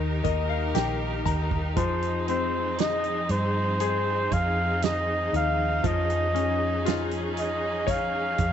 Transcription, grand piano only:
0.00 1.73 D#3 medium
0.24 1.73 A#3 medium
0.24 0.48 D#5 medium
0.49 0.73 F5 medium
0.75 1.74 G4 medium
0.75 1.22 G5 medium
1.26 1.73 A#5 medium
1.76 5.80 F3 medium
2.29 4.28 C4 medium
2.79 4.79 D#4 medium
3.81 5.80 G#4 medium
5.33 5.82 D#4 medium
5.83 8.53 F3 medium
6.35 8.34 C#4 medium
6.86 8.53 F4 medium
7.87 8.53 C#5 medium

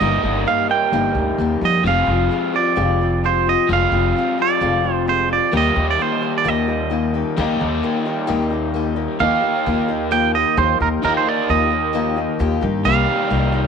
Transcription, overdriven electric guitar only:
0.00 1.83 G3 medium
0.00 1.83 A#3 medium
0.00 1.84 D#4 medium
0.00 1.84 A#4 medium
1.83 3.66 F3 medium
1.83 3.67 C4 medium
1.83 3.68 F4 medium
1.83 3.69 G#4 medium
3.67 5.51 F3 medium
3.67 5.52 C4 medium
3.67 5.52 F4 medium
3.71 5.53 G#4 medium
5.52 7.36 D#3 medium
5.52 7.38 G3 medium
5.52 7.38 A#3 medium
5.52 7.39 D#4 medium
5.52 7.40 G4 medium
7.37 9.18 D#3 medium
7.37 9.19 G3 medium
7.37 9.20 A#3 medium
7.37 9.21 D#4 medium
7.41 9.21 G4 loud
9.20 11.01 D#3 medium
9.20 11.04 A#3 medium
9.20 11.04 D#4 medium
9.24 11.06 G4 medium
11.02 12.84 D#3 medium
11.02 12.87 A#3 medium
11.02 12.87 D#4 medium
11.02 12.88 G4 medium
12.85 13.67 C3 medium
12.85 13.67 D#3 medium
12.85 13.67 G3 medium
12.85 13.67 D#4 medium
12.85 13.67 G4 loud

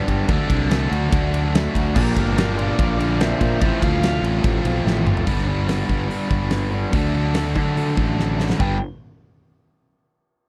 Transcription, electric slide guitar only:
1.96 2.16 G4 medium
1.96 2.16 A#4 loud
2.19 2.36 G4 medium
2.19 2.37 A#4 medium
2.38 2.56 G4 medium
2.38 2.57 A#4 medium
2.58 2.77 A#4 medium
2.58 2.78 D5 medium
2.79 2.98 A#4 medium
2.79 2.99 D5 medium
2.99 3.18 A#4 medium
2.99 3.20 D5 medium
3.20 3.39 C5 medium
3.20 3.40 E5 medium
3.41 3.60 C5 medium
3.41 3.61 E5 medium
3.61 3.80 C5 medium
3.61 3.82 E5 loud
3.84 4.23 F5 loud
8.60 8.79 G5 loud

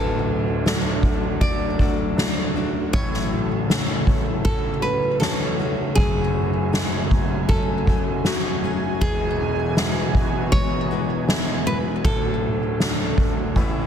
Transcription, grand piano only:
0.00 2.90 D1 medium
0.00 2.90 D2 medium
0.66 1.40 F#3 soft
0.66 1.40 A3 soft
0.66 1.40 D4 medium
2.16 2.91 F#3 medium
2.16 2.91 A3 soft
2.16 2.91 D4 medium
2.93 5.93 A1 medium
2.93 5.93 A2 medium
3.69 4.43 F#3 soft
3.69 4.43 A3 soft
3.69 4.43 C#4 medium
5.21 5.95 F#3 medium
5.21 5.95 A3 soft
5.21 5.95 C#4 medium
5.96 8.97 F#1 medium
5.96 8.97 F#2 medium
6.73 7.47 G#3 soft
6.73 7.47 A3 soft
6.73 7.47 F#4 medium
8.25 8.99 F#3 medium
8.25 8.99 A3 soft
8.25 8.99 F#4 medium
9.02 12.01 E1 medium
9.02 12.01 E2 medium
9.77 10.51 F#3 medium
9.77 10.51 G#3 soft
9.77 10.51 E4 medium
11.28 12.02 F#3 medium
11.28 12.02 G#3 soft
11.28 12.03 E4 medium
12.05 13.53 D1 medium
12.05 13.53 D2 medium
12.81 13.54 F#3 soft
12.81 13.55 A3 soft
12.81 13.55 D4 medium
13.56 13.87 A1 medium
13.56 13.87 A2 medium

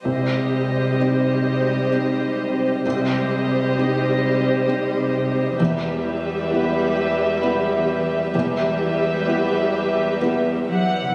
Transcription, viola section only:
0.05 2.81 G3 soft
0.05 2.81 G4 soft
2.85 5.56 G3 soft
2.85 5.55 G4 soft
5.60 8.30 G3 medium
5.60 8.30 G4 soft
8.34 10.95 G3 soft
8.34 10.95 G4 soft

